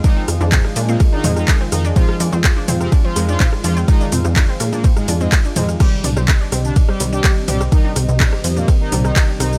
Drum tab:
CC |----------------|----------------|----------------|x---------------|
RD |x---x---x---x---|x---x---x---x---|x---x---x---x---|x---x---x---x---|
HH |--o---o---o-o-o-|--o---o---o---o-|--o---o---o-o-o-|--o---o---o---o-|
SH |x-xxx-xxx-xxx-xx|x-xxx-xxx-xxx-xx|xxxxx-xxxxxxxxxx|x-xxx-xxx-xxx-xx|
CP |----x-------x---|----x-------x---|----x-------x---|----x-------x---|
SD |--r--r--r--r--r-|-r--r--r--r--r--|r--r--r--r--r--r|r--r--r--r--r--r|
T2 |----o-----o-----|o-----o-----o---|--o-----o-----o-|--o-----o-----o-|
BD |o---o---o---o---|o---o---o---o---|o---o---o---o---|o---o---o---o---|

CC |----------------|
RD |x---x---x---x---|
HH |--o---o---o-o-o-|
SH |x-xxx-xxx-xxx-xx|
CP |----x-------x---|
SD |--r--r--r--r--r-|
T2 |----o-----o-----|
BD |o---o---o---o---|